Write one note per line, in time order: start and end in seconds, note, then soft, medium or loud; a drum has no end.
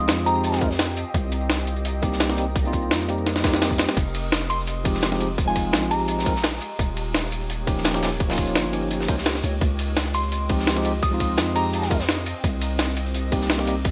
0.00 0.10 C#2 loud
0.00 0.23 F3 loud
0.00 0.24 G#3 medium
0.00 0.24 C4 medium
0.00 3.93 C4 medium
0.00 0.25 D#4 medium
0.00 0.25 F4 loud
0.00 1.11 F4 medium
0.00 3.93 G4 medium
0.00 6.58 D#5 medium
0.00 shaker soft
0.08 1.05 F2 medium
0.08 snare loud
0.08 closed hi-hat medium
0.25 0.59 F3 medium
0.25 0.59 G#3 medium
0.25 0.59 C4 medium
0.25 0.60 D#4 medium
0.25 0.60 G4 medium
0.25 0.62 A#5 medium
0.25 closed hi-hat medium
0.25 shaker medium
0.36 shaker soft
0.44 closed hi-hat medium
0.52 snare medium
0.60 0.67 F3 medium
0.60 0.67 G#3 medium
0.60 0.68 C4 medium
0.60 0.68 D#4 medium
0.60 0.68 A#4 loud
0.60 kick loud
0.60 closed hi-hat medium
0.60 shaker medium
0.71 snare soft
0.79 snare loud
0.79 closed hi-hat medium
0.88 snare soft
0.97 closed hi-hat medium
0.97 shaker medium
1.14 2.93 C2 loud
1.14 3.94 A#4 medium
1.14 kick loud
1.14 closed hi-hat medium
1.14 closed hi-hat loud
1.32 closed hi-hat medium
1.32 shaker medium
1.41 shaker soft
1.50 snare loud
1.50 closed hi-hat medium
1.50 open hi-hat medium
1.67 closed hi-hat medium
1.67 shaker medium
1.76 closed hi-hat soft
1.76 shaker soft
1.85 closed hi-hat loud
1.85 closed hi-hat medium
2.02 2.27 G3 medium
2.02 2.27 A#3 medium
2.02 2.27 C4 medium
2.02 2.28 D#4 medium
2.02 2.28 G4 medium
2.02 kick loud
2.02 closed hi-hat medium
2.02 shaker medium
2.12 snare soft
2.20 snare loud
2.20 closed hi-hat medium
2.20 closed hi-hat loud
2.28 2.35 G3 medium
2.28 2.36 A#3 medium
2.28 2.36 C4 medium
2.28 2.36 D#4 medium
2.28 2.37 G4 medium
2.28 snare soft
2.37 2.44 G3 medium
2.37 2.44 A#3 medium
2.37 2.44 C4 medium
2.37 2.45 D#4 medium
2.37 2.45 G4 medium
2.37 closed hi-hat medium
2.37 shaker medium
2.56 kick loud
2.56 closed hi-hat medium
2.56 closed hi-hat loud
2.63 3.06 G3 medium
2.63 3.06 A#3 medium
2.63 3.07 C4 medium
2.63 3.07 D#4 medium
2.63 closed hi-hat soft
2.67 3.08 F4 loud
2.73 kick medium
2.73 closed hi-hat medium
2.73 shaker medium
2.83 shaker soft
2.91 3.87 F2 medium
2.91 snare loud
2.91 closed hi-hat medium
2.91 closed hi-hat loud
3.08 3.41 G3 medium
3.08 3.42 A#3 medium
3.08 3.42 C4 medium
3.08 3.42 D#4 medium
3.08 3.43 G4 medium
3.08 closed hi-hat medium
3.08 shaker medium
3.18 shaker soft
3.26 snare medium
3.26 closed hi-hat medium
3.26 closed hi-hat loud
3.36 snare medium
3.42 3.95 G3 medium
3.42 3.95 A#3 medium
3.42 3.96 C4 medium
3.42 3.96 D#4 medium
3.42 kick loud
3.42 snare loud
3.42 snare medium
3.42 closed hi-hat medium
3.42 open hi-hat medium
3.42 shaker medium
3.46 3.97 G4 medium
3.54 snare medium
3.54 shaker soft
3.61 snare loud
3.61 snare medium
3.61 closed hi-hat loud
3.61 open hi-hat medium
3.71 kick medium
3.78 snare loud
3.78 closed hi-hat medium
3.78 shaker medium
3.89 snare soft
3.89 snare medium
3.97 5.75 F1 loud
3.97 6.59 G#3 medium
3.97 6.59 F4 medium
3.97 12.40 G4 medium
3.97 kick loud
3.97 closed hi-hat medium
3.97 closed hi-hat loud
3.97 crash medium
4.15 closed hi-hat medium
4.15 ride medium
4.15 shaker medium
4.24 shaker soft
4.32 snare loud
4.32 closed hi-hat loud
4.32 open hi-hat medium
4.50 4.71 C6 medium
4.50 closed hi-hat medium
4.50 ride medium
4.50 shaker medium
4.59 closed hi-hat soft
4.59 shaker soft
4.67 closed hi-hat medium
4.67 closed hi-hat loud
4.84 5.09 F3 medium
4.84 5.10 G#3 medium
4.84 5.10 C4 medium
4.84 5.10 D#4 medium
4.84 5.10 G4 medium
4.84 kick loud
4.84 closed hi-hat medium
4.84 ride medium
4.84 shaker medium
4.94 snare soft
5.02 snare loud
5.02 closed hi-hat medium
5.02 closed hi-hat loud
5.11 5.18 F3 medium
5.11 5.18 G#3 medium
5.11 5.18 C4 medium
5.11 5.19 D#4 medium
5.11 5.19 G4 medium
5.11 snare soft
5.19 5.26 F3 medium
5.19 5.26 G#3 medium
5.19 5.27 C4 medium
5.19 5.27 D#4 medium
5.19 5.27 G4 medium
5.19 closed hi-hat medium
5.19 ride medium
5.19 shaker medium
5.38 kick loud
5.38 closed hi-hat loud
5.38 closed hi-hat medium
5.45 5.88 F3 loud
5.45 5.88 G#3 medium
5.45 5.89 C4 medium
5.45 5.90 D#4 medium
5.45 5.68 G#5 medium
5.45 closed hi-hat soft
5.50 5.90 F4 loud
5.56 kick medium
5.56 closed hi-hat medium
5.56 ride medium
5.56 shaker medium
5.65 shaker soft
5.73 6.60 A#1 medium
5.73 snare loud
5.73 closed hi-hat loud
5.90 6.24 F3 medium
5.90 6.24 G#3 medium
5.90 6.24 C4 medium
5.90 6.25 D#4 medium
5.90 6.25 G4 medium
5.90 6.41 A#5 medium
5.90 closed hi-hat medium
5.90 ride medium
5.90 shaker medium
6.00 shaker soft
6.08 closed hi-hat medium
6.08 closed hi-hat loud
6.19 snare medium
6.25 6.32 F3 medium
6.25 6.32 G#3 medium
6.25 6.33 C4 medium
6.25 6.33 D#4 medium
6.25 6.33 A#4 medium
6.25 kick loud
6.25 closed hi-hat medium
6.25 ride medium
6.25 shaker medium
6.36 snare medium
6.44 snare loud
6.44 closed hi-hat loud
6.53 snare soft
6.61 9.41 A#3 medium
6.61 9.41 D#4 medium
6.61 9.41 C#5 medium
6.61 closed hi-hat medium
6.61 ride medium
6.61 shaker medium
6.79 8.57 D#1 loud
6.79 kick loud
6.79 closed hi-hat medium
6.97 closed hi-hat medium
6.97 ride medium
6.97 shaker medium
7.06 shaker soft
7.14 snare loud
7.14 closed hi-hat medium
7.14 open hi-hat medium
7.32 closed hi-hat medium
7.32 ride medium
7.32 shaker medium
7.41 closed hi-hat soft
7.41 shaker soft
7.50 closed hi-hat medium
7.66 7.92 F3 medium
7.66 7.92 A#3 medium
7.66 7.92 C#4 medium
7.66 7.92 D#4 medium
7.66 7.93 G4 medium
7.66 kick loud
7.66 closed hi-hat medium
7.66 ride medium
7.66 shaker medium
7.78 snare soft
7.84 snare loud
7.84 closed hi-hat medium
7.93 8.00 F3 medium
7.93 8.00 A#3 medium
7.93 8.01 C#4 medium
7.93 8.01 D#4 medium
7.93 8.01 G4 medium
7.93 snare soft
8.02 8.08 F3 medium
8.02 8.09 A#3 medium
8.02 8.09 C#4 medium
8.02 8.09 D#4 medium
8.02 8.09 G4 medium
8.02 snare loud
8.02 closed hi-hat medium
8.02 open hi-hat medium
8.02 ride medium
8.02 shaker medium
8.20 kick loud
8.20 closed hi-hat medium
8.27 8.70 F3 medium
8.27 8.71 A#3 medium
8.27 8.71 C#4 medium
8.27 8.72 D#4 medium
8.27 snare loud
8.27 open hi-hat medium
8.32 8.72 F4 loud
8.38 kick medium
8.38 closed hi-hat medium
8.38 ride medium
8.38 shaker medium
8.47 closed hi-hat medium
8.47 shaker soft
8.55 9.10 G1 medium
8.55 snare loud
8.55 closed hi-hat medium
8.72 9.06 F3 medium
8.72 9.06 A#3 medium
8.72 9.07 C#4 medium
8.72 9.07 D#4 medium
8.72 9.07 G4 medium
8.72 closed hi-hat medium
8.72 ride medium
8.72 shaker medium
8.82 shaker soft
8.91 closed hi-hat medium
9.01 snare medium
9.07 9.42 C#2 loud
9.07 9.14 F3 medium
9.07 9.15 A#3 medium
9.07 9.15 C#4 medium
9.07 9.15 D#4 medium
9.07 9.15 C5 medium
9.07 kick loud
9.07 closed hi-hat medium
9.07 ride medium
9.07 shaker medium
9.18 snare soft
9.26 snare loud
9.26 closed hi-hat medium
9.35 snare soft
9.44 9.60 C#2 medium
9.44 13.91 C4 medium
9.44 12.41 F4 medium
9.44 13.91 D#5 medium
9.44 closed hi-hat medium
9.44 ride medium
9.44 shaker medium
9.61 11.40 C#2 loud
9.61 kick loud
9.61 closed hi-hat medium
9.79 closed hi-hat medium
9.79 ride medium
9.79 shaker medium
9.88 shaker soft
9.96 snare loud
9.96 closed hi-hat medium
9.96 open hi-hat medium
10.14 10.36 C6 medium
10.14 closed hi-hat medium
10.14 ride medium
10.14 shaker medium
10.23 closed hi-hat soft
10.23 shaker soft
10.32 closed hi-hat medium
10.49 10.74 F3 medium
10.49 10.74 G#3 medium
10.49 10.74 C4 medium
10.49 10.75 D#4 medium
10.49 10.75 G4 medium
10.49 kick loud
10.49 closed hi-hat medium
10.49 ride medium
10.49 shaker medium
10.59 snare soft
10.67 snare loud
10.67 closed hi-hat medium
10.67 closed hi-hat loud
10.75 10.82 F3 medium
10.75 10.83 G#3 medium
10.75 10.83 C4 medium
10.75 10.83 D#4 medium
10.75 10.84 G4 medium
10.75 snare soft
10.84 10.91 F3 medium
10.84 10.91 G#3 medium
10.84 10.91 C4 medium
10.84 10.92 D#4 medium
10.84 10.92 G4 medium
10.84 closed hi-hat medium
10.84 ride medium
10.84 shaker medium
11.03 11.24 D#6 medium
11.03 kick loud
11.03 closed hi-hat medium
11.09 11.52 F3 medium
11.09 11.53 G#3 medium
11.09 11.54 C4 medium
11.09 11.54 D#4 medium
11.09 closed hi-hat soft
11.14 11.55 F4 loud
11.20 kick medium
11.20 closed hi-hat medium
11.20 ride medium
11.20 shaker medium
11.30 shaker soft
11.38 12.34 F2 medium
11.38 snare loud
11.38 closed hi-hat medium
11.54 11.88 F3 medium
11.54 11.89 G#3 medium
11.54 11.89 C4 medium
11.54 11.89 D#4 medium
11.54 11.89 G4 medium
11.54 11.91 A#5 medium
11.54 closed hi-hat medium
11.54 ride medium
11.54 shaker medium
11.65 shaker soft
11.73 closed hi-hat loud
11.82 snare soft
11.90 11.97 F3 medium
11.90 11.97 G#3 medium
11.90 11.97 C4 medium
11.90 11.97 D#4 medium
11.90 11.98 A#4 medium
11.90 kick loud
11.90 closed hi-hat medium
11.90 ride medium
11.90 shaker medium
12.00 snare medium
12.09 snare loud
12.09 closed hi-hat medium
12.09 closed hi-hat loud
12.18 snare soft
12.26 closed hi-hat medium
12.26 ride medium
12.26 shaker medium
12.44 13.91 C2 loud
12.44 13.91 G4 medium
12.44 13.91 A#4 medium
12.44 kick loud
12.44 closed hi-hat loud
12.44 closed hi-hat medium
12.62 closed hi-hat medium
12.62 ride medium
12.62 shaker medium
12.71 shaker soft
12.79 snare loud
12.79 closed hi-hat loud
12.79 open hi-hat medium
12.97 closed hi-hat medium
12.97 ride medium
12.97 shaker medium
13.06 closed hi-hat soft
13.06 shaker soft
13.14 closed hi-hat loud
13.14 closed hi-hat medium
13.31 13.56 G3 medium
13.31 13.56 A#3 medium
13.31 13.57 C4 medium
13.31 13.57 D#4 medium
13.31 13.57 G4 medium
13.31 kick loud
13.31 closed hi-hat medium
13.31 ride medium
13.31 shaker medium
13.41 snare soft
13.50 snare loud
13.50 closed hi-hat loud
13.50 closed hi-hat medium
13.58 13.65 G3 medium
13.58 13.65 A#3 medium
13.58 13.65 C4 medium
13.58 13.66 D#4 medium
13.58 13.66 G4 medium
13.58 snare soft
13.66 13.73 G3 medium
13.66 13.73 A#3 medium
13.66 13.74 C4 medium
13.66 13.74 D#4 medium
13.66 13.74 G4 medium
13.66 closed hi-hat medium
13.66 ride medium
13.66 shaker medium
13.85 kick loud
13.85 closed hi-hat medium
13.85 closed hi-hat loud